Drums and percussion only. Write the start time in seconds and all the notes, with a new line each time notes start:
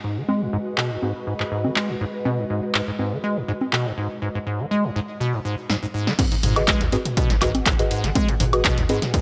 0.29 high conga
0.78 clap
1.02 high conga
1.40 clap
1.65 high conga
1.76 clap
2.25 high conga
2.75 clap
2.99 high conga
3.61 high conga
3.73 clap
5.70 snare
6.07 snare
6.19 kick, closed hi-hat, crash, high conga
6.32 closed hi-hat
6.43 mid tom, open hi-hat
6.56 closed hi-hat, high woodblock
6.68 kick, clap, closed hi-hat
6.81 snare, closed hi-hat
6.92 open hi-hat, high conga
7.05 closed hi-hat, mid tom
7.17 kick, closed hi-hat
7.30 snare, closed hi-hat
7.42 kick, clap, open hi-hat, high woodblock
7.55 closed hi-hat, high conga
7.66 kick, clap, closed hi-hat
7.79 closed hi-hat
7.91 open hi-hat
8.04 snare, closed hi-hat
8.15 kick, closed hi-hat, high conga
8.29 closed hi-hat
8.40 mid tom, open hi-hat
8.53 closed hi-hat, high woodblock
8.65 kick, clap, closed hi-hat
8.78 snare, closed hi-hat
8.89 open hi-hat, high conga
9.02 snare, closed hi-hat, mid tom
9.14 kick, closed hi-hat